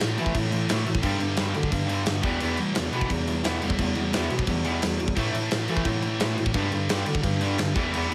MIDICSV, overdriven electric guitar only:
0, 0, Header, 1, 2, 480
1, 0, Start_track
1, 0, Tempo, 344828
1, 1446, Time_signature, 4, 2, 24, 8
1, 11336, End_track
2, 0, Start_track
2, 0, Title_t, "Overdriven electric guitar"
2, 0, Program_c, 0, 29
2, 0, Note_on_c, 0, 45, 82
2, 2, Note_on_c, 0, 52, 85
2, 217, Note_off_c, 0, 45, 0
2, 221, Note_off_c, 0, 52, 0
2, 236, Note_on_c, 0, 45, 84
2, 255, Note_on_c, 0, 52, 102
2, 261, Note_on_c, 0, 57, 117
2, 456, Note_off_c, 0, 45, 0
2, 461, Note_off_c, 0, 52, 0
2, 473, Note_on_c, 0, 45, 73
2, 478, Note_on_c, 0, 52, 93
2, 480, Note_off_c, 0, 57, 0
2, 696, Note_off_c, 0, 45, 0
2, 698, Note_off_c, 0, 52, 0
2, 712, Note_on_c, 0, 45, 61
2, 715, Note_on_c, 0, 52, 78
2, 935, Note_off_c, 0, 45, 0
2, 937, Note_off_c, 0, 52, 0
2, 968, Note_on_c, 0, 45, 89
2, 974, Note_on_c, 0, 52, 91
2, 988, Note_on_c, 0, 57, 88
2, 1175, Note_off_c, 0, 45, 0
2, 1187, Note_off_c, 0, 52, 0
2, 1192, Note_on_c, 0, 45, 75
2, 1203, Note_off_c, 0, 57, 0
2, 1203, Note_on_c, 0, 52, 69
2, 1415, Note_off_c, 0, 45, 0
2, 1421, Note_off_c, 0, 52, 0
2, 1421, Note_on_c, 0, 43, 96
2, 1430, Note_on_c, 0, 50, 94
2, 1437, Note_on_c, 0, 55, 105
2, 1644, Note_off_c, 0, 43, 0
2, 1649, Note_off_c, 0, 50, 0
2, 1661, Note_on_c, 0, 43, 83
2, 1666, Note_on_c, 0, 50, 78
2, 1667, Note_off_c, 0, 55, 0
2, 1889, Note_off_c, 0, 43, 0
2, 1892, Note_off_c, 0, 50, 0
2, 1909, Note_on_c, 0, 43, 95
2, 1916, Note_on_c, 0, 50, 96
2, 1917, Note_on_c, 0, 55, 99
2, 2122, Note_off_c, 0, 43, 0
2, 2135, Note_off_c, 0, 50, 0
2, 2139, Note_on_c, 0, 43, 71
2, 2147, Note_off_c, 0, 55, 0
2, 2152, Note_on_c, 0, 50, 81
2, 2368, Note_off_c, 0, 43, 0
2, 2369, Note_off_c, 0, 50, 0
2, 2386, Note_on_c, 0, 50, 89
2, 2395, Note_on_c, 0, 43, 75
2, 2586, Note_off_c, 0, 43, 0
2, 2599, Note_off_c, 0, 50, 0
2, 2603, Note_on_c, 0, 43, 91
2, 2616, Note_on_c, 0, 50, 91
2, 2629, Note_on_c, 0, 55, 94
2, 2848, Note_off_c, 0, 50, 0
2, 2850, Note_off_c, 0, 43, 0
2, 2863, Note_off_c, 0, 55, 0
2, 2865, Note_on_c, 0, 50, 87
2, 2870, Note_on_c, 0, 43, 65
2, 3091, Note_off_c, 0, 50, 0
2, 3094, Note_off_c, 0, 43, 0
2, 3097, Note_on_c, 0, 52, 78
2, 3105, Note_on_c, 0, 55, 85
2, 3116, Note_on_c, 0, 59, 96
2, 3323, Note_off_c, 0, 52, 0
2, 3338, Note_off_c, 0, 55, 0
2, 3339, Note_on_c, 0, 52, 89
2, 3342, Note_off_c, 0, 59, 0
2, 3354, Note_on_c, 0, 55, 104
2, 3359, Note_on_c, 0, 59, 108
2, 3566, Note_off_c, 0, 52, 0
2, 3572, Note_off_c, 0, 55, 0
2, 3582, Note_on_c, 0, 52, 77
2, 3588, Note_off_c, 0, 59, 0
2, 3589, Note_on_c, 0, 55, 92
2, 3805, Note_off_c, 0, 52, 0
2, 3808, Note_off_c, 0, 55, 0
2, 3822, Note_on_c, 0, 52, 83
2, 3825, Note_on_c, 0, 55, 94
2, 4049, Note_off_c, 0, 52, 0
2, 4051, Note_off_c, 0, 55, 0
2, 4076, Note_on_c, 0, 52, 101
2, 4088, Note_on_c, 0, 59, 104
2, 4091, Note_on_c, 0, 55, 105
2, 4298, Note_off_c, 0, 55, 0
2, 4301, Note_off_c, 0, 52, 0
2, 4312, Note_off_c, 0, 59, 0
2, 4315, Note_on_c, 0, 55, 83
2, 4317, Note_on_c, 0, 52, 83
2, 4536, Note_off_c, 0, 55, 0
2, 4537, Note_off_c, 0, 52, 0
2, 4569, Note_on_c, 0, 55, 80
2, 4571, Note_on_c, 0, 52, 73
2, 4764, Note_off_c, 0, 52, 0
2, 4774, Note_off_c, 0, 55, 0
2, 4781, Note_on_c, 0, 52, 86
2, 4791, Note_on_c, 0, 55, 89
2, 4800, Note_on_c, 0, 59, 97
2, 5019, Note_off_c, 0, 52, 0
2, 5024, Note_off_c, 0, 55, 0
2, 5028, Note_off_c, 0, 59, 0
2, 5048, Note_on_c, 0, 52, 64
2, 5054, Note_on_c, 0, 55, 69
2, 5263, Note_off_c, 0, 52, 0
2, 5266, Note_off_c, 0, 55, 0
2, 5305, Note_on_c, 0, 55, 89
2, 5306, Note_on_c, 0, 52, 83
2, 5511, Note_off_c, 0, 55, 0
2, 5512, Note_off_c, 0, 52, 0
2, 5530, Note_on_c, 0, 52, 70
2, 5535, Note_on_c, 0, 55, 89
2, 5744, Note_off_c, 0, 52, 0
2, 5746, Note_off_c, 0, 55, 0
2, 5778, Note_on_c, 0, 52, 96
2, 5780, Note_on_c, 0, 55, 107
2, 5793, Note_on_c, 0, 59, 93
2, 5997, Note_off_c, 0, 52, 0
2, 5999, Note_off_c, 0, 55, 0
2, 6005, Note_off_c, 0, 59, 0
2, 6025, Note_on_c, 0, 52, 76
2, 6031, Note_on_c, 0, 55, 91
2, 6232, Note_off_c, 0, 52, 0
2, 6234, Note_off_c, 0, 55, 0
2, 6262, Note_on_c, 0, 52, 88
2, 6266, Note_on_c, 0, 55, 80
2, 6454, Note_off_c, 0, 52, 0
2, 6466, Note_off_c, 0, 55, 0
2, 6471, Note_on_c, 0, 52, 92
2, 6483, Note_on_c, 0, 55, 84
2, 6492, Note_on_c, 0, 59, 93
2, 6701, Note_off_c, 0, 52, 0
2, 6710, Note_off_c, 0, 55, 0
2, 6715, Note_off_c, 0, 59, 0
2, 6718, Note_on_c, 0, 52, 79
2, 6725, Note_on_c, 0, 55, 70
2, 6938, Note_off_c, 0, 52, 0
2, 6942, Note_off_c, 0, 55, 0
2, 6962, Note_on_c, 0, 52, 61
2, 6966, Note_on_c, 0, 55, 78
2, 7180, Note_off_c, 0, 52, 0
2, 7183, Note_off_c, 0, 55, 0
2, 7196, Note_on_c, 0, 45, 94
2, 7207, Note_on_c, 0, 52, 105
2, 7216, Note_on_c, 0, 57, 96
2, 7419, Note_off_c, 0, 52, 0
2, 7427, Note_off_c, 0, 45, 0
2, 7435, Note_on_c, 0, 52, 80
2, 7437, Note_off_c, 0, 57, 0
2, 7443, Note_on_c, 0, 45, 70
2, 7657, Note_off_c, 0, 52, 0
2, 7661, Note_off_c, 0, 45, 0
2, 7686, Note_on_c, 0, 52, 84
2, 7690, Note_on_c, 0, 45, 83
2, 7899, Note_off_c, 0, 45, 0
2, 7903, Note_off_c, 0, 52, 0
2, 7916, Note_on_c, 0, 45, 102
2, 7927, Note_on_c, 0, 52, 90
2, 7939, Note_on_c, 0, 57, 107
2, 8127, Note_off_c, 0, 45, 0
2, 8138, Note_off_c, 0, 52, 0
2, 8144, Note_on_c, 0, 45, 75
2, 8155, Note_on_c, 0, 52, 89
2, 8159, Note_off_c, 0, 57, 0
2, 8365, Note_off_c, 0, 45, 0
2, 8368, Note_off_c, 0, 52, 0
2, 8382, Note_on_c, 0, 45, 71
2, 8385, Note_on_c, 0, 52, 80
2, 8604, Note_off_c, 0, 45, 0
2, 8607, Note_off_c, 0, 52, 0
2, 8621, Note_on_c, 0, 45, 82
2, 8624, Note_on_c, 0, 52, 92
2, 8635, Note_on_c, 0, 57, 94
2, 8861, Note_off_c, 0, 45, 0
2, 8862, Note_off_c, 0, 52, 0
2, 8867, Note_off_c, 0, 57, 0
2, 8888, Note_on_c, 0, 52, 73
2, 8889, Note_on_c, 0, 45, 67
2, 9105, Note_off_c, 0, 45, 0
2, 9105, Note_off_c, 0, 52, 0
2, 9126, Note_on_c, 0, 43, 95
2, 9136, Note_on_c, 0, 50, 89
2, 9140, Note_on_c, 0, 55, 102
2, 9353, Note_off_c, 0, 43, 0
2, 9358, Note_off_c, 0, 50, 0
2, 9360, Note_off_c, 0, 55, 0
2, 9367, Note_on_c, 0, 43, 81
2, 9372, Note_on_c, 0, 50, 81
2, 9579, Note_off_c, 0, 43, 0
2, 9587, Note_off_c, 0, 50, 0
2, 9596, Note_on_c, 0, 43, 89
2, 9606, Note_on_c, 0, 50, 101
2, 9613, Note_on_c, 0, 55, 108
2, 9821, Note_off_c, 0, 43, 0
2, 9824, Note_off_c, 0, 50, 0
2, 9837, Note_off_c, 0, 55, 0
2, 9838, Note_on_c, 0, 43, 74
2, 9841, Note_on_c, 0, 50, 92
2, 10045, Note_off_c, 0, 50, 0
2, 10046, Note_off_c, 0, 43, 0
2, 10061, Note_on_c, 0, 50, 92
2, 10063, Note_on_c, 0, 43, 81
2, 10292, Note_off_c, 0, 50, 0
2, 10293, Note_off_c, 0, 43, 0
2, 10309, Note_on_c, 0, 43, 86
2, 10321, Note_on_c, 0, 50, 93
2, 10328, Note_on_c, 0, 55, 102
2, 10543, Note_off_c, 0, 43, 0
2, 10544, Note_off_c, 0, 50, 0
2, 10555, Note_off_c, 0, 55, 0
2, 10560, Note_on_c, 0, 43, 74
2, 10561, Note_on_c, 0, 50, 89
2, 10782, Note_off_c, 0, 43, 0
2, 10782, Note_off_c, 0, 50, 0
2, 10791, Note_on_c, 0, 52, 83
2, 10797, Note_on_c, 0, 55, 81
2, 10807, Note_on_c, 0, 59, 90
2, 11027, Note_off_c, 0, 52, 0
2, 11030, Note_off_c, 0, 55, 0
2, 11035, Note_off_c, 0, 59, 0
2, 11048, Note_on_c, 0, 52, 89
2, 11057, Note_on_c, 0, 55, 94
2, 11066, Note_on_c, 0, 59, 98
2, 11276, Note_off_c, 0, 52, 0
2, 11280, Note_off_c, 0, 55, 0
2, 11285, Note_off_c, 0, 59, 0
2, 11336, End_track
0, 0, End_of_file